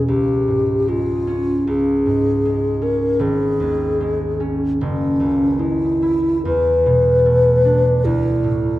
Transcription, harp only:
0, 0, Header, 1, 2, 480
1, 0, Start_track
1, 0, Tempo, 797872
1, 50, Time_signature, 4, 2, 24, 8
1, 1011, Tempo, 765306
1, 1971, Tempo, 794702
1, 3411, Tempo, 862069
1, 3891, Tempo, 789474
1, 5311, End_track
2, 0, Start_track
2, 0, Title_t, "Harp"
2, 0, Program_c, 0, 46
2, 0, Note_on_c, 0, 40, 36
2, 0, Note_on_c, 0, 47, 36
2, 0, Note_on_c, 0, 56, 37
2, 0, Note_on_c, 0, 61, 34
2, 49, Note_on_c, 0, 37, 45
2, 68, Note_off_c, 0, 47, 0
2, 70, Note_off_c, 0, 40, 0
2, 287, Note_on_c, 0, 44, 29
2, 521, Note_off_c, 0, 56, 0
2, 528, Note_on_c, 0, 56, 40
2, 758, Note_off_c, 0, 61, 0
2, 765, Note_on_c, 0, 61, 41
2, 999, Note_off_c, 0, 37, 0
2, 1006, Note_on_c, 0, 37, 43
2, 1242, Note_off_c, 0, 44, 0
2, 1249, Note_on_c, 0, 44, 34
2, 1488, Note_off_c, 0, 56, 0
2, 1496, Note_on_c, 0, 56, 37
2, 1716, Note_off_c, 0, 61, 0
2, 1724, Note_on_c, 0, 61, 35
2, 1960, Note_on_c, 0, 32, 50
2, 1987, Note_off_c, 0, 37, 0
2, 1987, Note_off_c, 0, 44, 0
2, 2205, Note_on_c, 0, 39, 35
2, 2444, Note_off_c, 0, 56, 0
2, 2451, Note_on_c, 0, 56, 43
2, 2682, Note_off_c, 0, 61, 0
2, 2690, Note_on_c, 0, 61, 40
2, 2937, Note_on_c, 0, 30, 44
2, 2951, Note_off_c, 0, 32, 0
2, 2954, Note_off_c, 0, 39, 0
2, 3171, Note_on_c, 0, 37, 36
2, 3401, Note_off_c, 0, 56, 0
2, 3408, Note_on_c, 0, 56, 38
2, 3649, Note_on_c, 0, 64, 37
2, 3888, Note_on_c, 0, 40, 51
2, 3907, Note_off_c, 0, 61, 0
2, 3910, Note_off_c, 0, 37, 0
2, 3910, Note_off_c, 0, 56, 0
2, 3911, Note_off_c, 0, 30, 0
2, 4136, Note_on_c, 0, 47, 37
2, 4376, Note_on_c, 0, 57, 40
2, 4615, Note_on_c, 0, 62, 40
2, 4858, Note_on_c, 0, 38, 44
2, 4870, Note_off_c, 0, 40, 0
2, 4872, Note_off_c, 0, 47, 0
2, 5096, Note_on_c, 0, 45, 36
2, 5311, Note_off_c, 0, 38, 0
2, 5311, Note_off_c, 0, 45, 0
2, 5311, Note_off_c, 0, 57, 0
2, 5311, Note_off_c, 0, 62, 0
2, 5311, Note_off_c, 0, 64, 0
2, 5311, End_track
0, 0, End_of_file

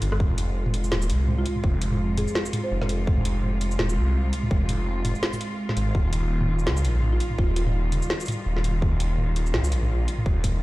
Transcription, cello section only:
0, 0, Header, 1, 2, 480
1, 0, Start_track
1, 0, Key_signature, -4, "minor"
1, 0, Tempo, 359281
1, 266, Time_signature, 4, 2, 24, 8
1, 14198, End_track
2, 0, Start_track
2, 0, Title_t, "Cello section"
2, 0, Program_c, 0, 48
2, 0, Note_on_c, 0, 51, 79
2, 0, Note_on_c, 0, 55, 72
2, 0, Note_on_c, 0, 65, 85
2, 211, Note_off_c, 0, 65, 0
2, 214, Note_off_c, 0, 51, 0
2, 214, Note_off_c, 0, 55, 0
2, 268, Note_on_c, 0, 65, 87
2, 269, Note_on_c, 0, 56, 72
2, 270, Note_on_c, 0, 48, 80
2, 7894, Note_off_c, 0, 48, 0
2, 7894, Note_off_c, 0, 56, 0
2, 7947, Note_on_c, 0, 55, 73
2, 7948, Note_on_c, 0, 51, 78
2, 14198, Note_off_c, 0, 51, 0
2, 14198, Note_off_c, 0, 55, 0
2, 14198, Note_off_c, 0, 65, 0
2, 14198, End_track
0, 0, End_of_file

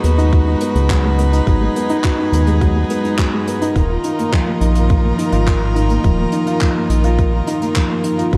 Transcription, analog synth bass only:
0, 0, Header, 1, 2, 480
1, 0, Start_track
1, 0, Tempo, 571429
1, 1234, Time_signature, 4, 2, 24, 8
1, 7034, End_track
2, 0, Start_track
2, 0, Title_t, "Analog synth bass"
2, 0, Program_c, 0, 38
2, 33, Note_on_c, 0, 39, 98
2, 469, Note_off_c, 0, 39, 0
2, 632, Note_on_c, 0, 37, 95
2, 1189, Note_off_c, 0, 37, 0
2, 1235, Note_on_c, 0, 32, 99
2, 1419, Note_off_c, 0, 32, 0
2, 1951, Note_on_c, 0, 39, 93
2, 2388, Note_off_c, 0, 39, 0
2, 3154, Note_on_c, 0, 27, 94
2, 3339, Note_off_c, 0, 27, 0
2, 3870, Note_on_c, 0, 34, 93
2, 4308, Note_off_c, 0, 34, 0
2, 4472, Note_on_c, 0, 32, 83
2, 5029, Note_off_c, 0, 32, 0
2, 5074, Note_on_c, 0, 27, 105
2, 5259, Note_off_c, 0, 27, 0
2, 5791, Note_on_c, 0, 34, 91
2, 6229, Note_off_c, 0, 34, 0
2, 6996, Note_on_c, 0, 32, 100
2, 7034, Note_off_c, 0, 32, 0
2, 7034, End_track
0, 0, End_of_file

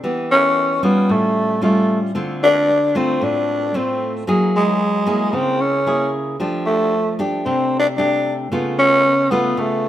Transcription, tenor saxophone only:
0, 0, Header, 1, 2, 480
1, 0, Start_track
1, 0, Tempo, 530504
1, 25, Time_signature, 4, 2, 24, 8
1, 8945, End_track
2, 0, Start_track
2, 0, Title_t, "Tenor saxophone"
2, 0, Program_c, 0, 66
2, 283, Note_on_c, 0, 61, 102
2, 720, Note_off_c, 0, 61, 0
2, 761, Note_on_c, 0, 59, 83
2, 1002, Note_on_c, 0, 57, 84
2, 1016, Note_off_c, 0, 59, 0
2, 1472, Note_off_c, 0, 57, 0
2, 1481, Note_on_c, 0, 57, 72
2, 1807, Note_off_c, 0, 57, 0
2, 2203, Note_on_c, 0, 62, 105
2, 2686, Note_on_c, 0, 60, 87
2, 2699, Note_off_c, 0, 62, 0
2, 2926, Note_on_c, 0, 62, 96
2, 2940, Note_off_c, 0, 60, 0
2, 3405, Note_on_c, 0, 60, 82
2, 3418, Note_off_c, 0, 62, 0
2, 3753, Note_off_c, 0, 60, 0
2, 4126, Note_on_c, 0, 56, 84
2, 4829, Note_on_c, 0, 60, 88
2, 4842, Note_off_c, 0, 56, 0
2, 5075, Note_on_c, 0, 61, 90
2, 5088, Note_off_c, 0, 60, 0
2, 5548, Note_off_c, 0, 61, 0
2, 6028, Note_on_c, 0, 57, 99
2, 6472, Note_off_c, 0, 57, 0
2, 6744, Note_on_c, 0, 60, 78
2, 7042, Note_off_c, 0, 60, 0
2, 7052, Note_on_c, 0, 62, 90
2, 7127, Note_off_c, 0, 62, 0
2, 7211, Note_on_c, 0, 62, 86
2, 7552, Note_off_c, 0, 62, 0
2, 7953, Note_on_c, 0, 61, 104
2, 8419, Note_on_c, 0, 59, 86
2, 8432, Note_off_c, 0, 61, 0
2, 8679, Note_on_c, 0, 57, 82
2, 8693, Note_off_c, 0, 59, 0
2, 8945, Note_off_c, 0, 57, 0
2, 8945, End_track
0, 0, End_of_file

